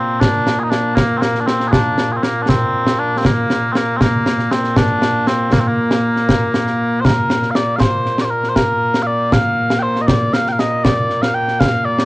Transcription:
Already playing: A#2 A#3 C4
0.20 D4, concert bass drum, snare
0.47 snare
0.59 G#4
0.63 D#4
0.70 D4, snare
0.95 A#3, concert bass drum, snare
1.18 A#3 C4
1.22 snare
1.35 snare
1.40 D4
1.47 C4, snare
1.60 snare
1.68 D4 G#4
1.73 concert bass drum, snare
1.98 snare
2.12 G#4
2.17 C4
2.23 A#3, snare
2.42 D4
2.49 C4, concert bass drum, snare
2.87 snare
3.00 D4
3.18 C4
3.25 A#3, concert bass drum, snare
3.50 snare
3.72 C4, snare
3.77 A#3
3.97 C4, concert bass drum, snare
4.01 A#3
4.26 snare
4.39 snare
4.51 C4, snare
4.64 snare
4.76 D4, concert bass drum, snare
5.02 snare
5.27 C4, snare
5.52 A#3, concert bass drum, snare
5.60 C4
5.68 A#3
5.91 snare
6.16 snare
6.29 concert bass drum, snare
6.54 snare
6.67 snare
7.01 C5
7.05 A#4, concert bass drum, snare
7.30 snare
7.43 snare
7.51 F5
7.55 D5, snare
7.76 C5 F5
7.80 concert bass drum, snare
8.06 snare
8.18 D5, snare
8.25 C5
8.30 A#4
8.44 snare
8.49 C5
8.56 A#4, concert bass drum, snare
8.94 snare
9.03 F5
9.07 D5
9.32 F5, concert bass drum, snare
9.70 snare
9.79 C5 G5
9.96 snare
10.02 D#5
10.07 D5, concert bass drum, snare
10.33 F5, snare
10.46 G5, snare
10.52 F5
10.59 D#5, snare
10.84 D5, concert bass drum, snare
11.10 snare
11.22 F5, snare
11.34 G5
11.48 snare
11.60 F5, concert bass drum, snare
11.85 D5
11.98 snare

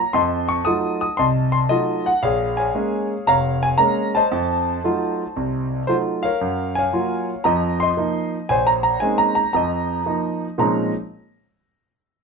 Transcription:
Already playing: C#5 A#5
0.13 F2 D#5 A5 C6
0.49 C#6
0.65 F#3 A3 D#4 F4 D#6
1.01 D#6
1.17 C2 C3 D#5 A5 C6
1.52 C6
1.69 F#3 A3 D#4 F4 D#5
2.06 F#5
2.23 A#1 G#4 C#5 F5
2.57 C#5 F5 G#5
2.75 G#3 A#3 C#4
3.27 F1 C#5 F5 A#5
3.63 G#5
3.78 G#3 A#3 C#4 A#5
4.15 C5 D#5 A5
4.32 F2
4.84 F#3 A3 D#4 F4
5.36 C2 C3
5.87 F#3 A3 D#4 F4 C5
6.23 A#4 C#5 F5
6.41 F#2
6.75 C#5 F5 G#5
6.93 F#3 A#3 F4
7.44 F2 F3 D#5 A#5
7.80 D#5 C6
7.97 F3 A#3 D#4
8.49 A#1 C5 C#5 G#5
8.67 A#5
8.83 A#5
9.00 G#3 A#3 C4 C#4 D#4 G#5
9.18 A#5
9.35 A#5
9.53 F2 F3 D#5 A#5
10.06 F3 A#3 D#4
10.58 A#2 F3 G#3 C4 C#4 D#4 A#5

